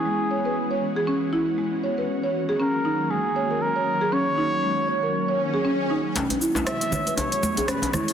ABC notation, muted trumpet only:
X:1
M:4/4
L:1/8
Q:"Swing 16ths" 1/4=118
K:C#dor
V:1 name="Muted trumpet"
G2 z6 | z2 A2 G2 A2 | c6 z2 | z2 e2 c2 B c |]